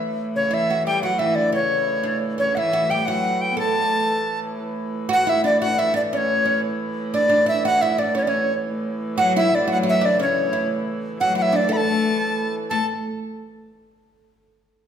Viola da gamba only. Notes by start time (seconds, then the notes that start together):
0.35 C#3
0.51 E3
0.85 G3
1.01 F#3
1.17 E3
1.35 D3
1.53 C#3
2.39 C#3
2.55 E3
2.89 G3
3.07 F#3
3.52 B3
3.59 A3
9.17 F#3
9.52 D3
9.62 G3
9.69 F#3
10.19 C#3
11.19 F#3
11.70 A3
12.71 A3